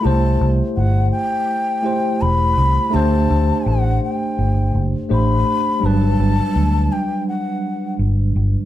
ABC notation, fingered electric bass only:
X:1
M:4/4
L:1/16
Q:"Swing 16ths" 1/4=83
K:G
V:1 name="Fingered electric bass" clef=bass
C,,2 C,, z G,,,2 z6 E,,,2 C,, z | D,,2 D,, z A,,,2 z2 G,,,2 F,,, z A,,,2 z2 | G,,,2 G,,, z D,,2 z6 G,,,2 G,,, z |]